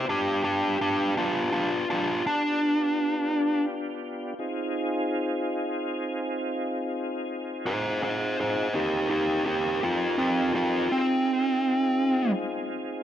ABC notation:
X:1
M:12/8
L:1/8
Q:3/8=55
K:Fdor
V:1 name="Lead electric guitar"
[DG] [DG] [DG] [DF] [DF] [DF] D4 z2 | z8 z [Ac] [Ac] [Ac] | [EG] [EG] [EG] [CF] [CF] [CF] C4 z2 |]
V:2 name="Tonewheel organ"
[=B,DFG]12 | [CEFA]12 | [CEGB]6 [CEFA]6 |]